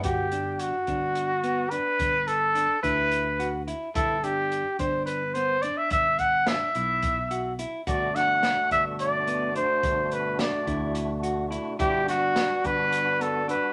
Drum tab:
HH |xxxxxxx|xxxxxxx|xxxxxxx|xxxxxxx|
SD |-------|-------|-------|--o----|
BD |o--o---|o--o---|o--o---|oo--o--|

HH |xxxxxxx|xxxxxxx|xxxxxxx|
SD |-oo----|--o----|-oo----|
BD |o--o---|o--o---|o--o---|